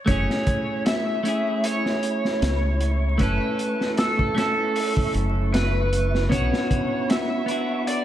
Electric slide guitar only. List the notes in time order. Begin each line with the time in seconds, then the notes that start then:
0.09 C#5
0.86 E5
1.65 C#5
3.21 B4
3.99 A4
4.38 A4
5.54 B4
6.32 C#5
7.10 E5
7.88 D5